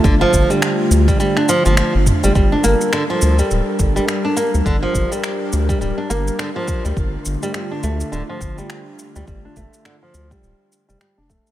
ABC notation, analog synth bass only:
X:1
M:4/4
L:1/16
Q:"Swing 16ths" 1/4=104
K:Gm
V:1 name="Analog synth bass" clef=bass
G,,, z G,,, z3 D,, z4 G,,, z G,,, z G,,, | G,,, z G,,, z3 D,, z D,,, z G,,, z4 D,, | G,,, z G,,, z3 D,, z D,,, z G,,, z4 D,, | G,,, z G,,, z3 D,, z D,,, z G,,, z4 D,, |
G,,, z G,,, z3 D,, z D,,, z2 F,,, z F,,, D,,, z |]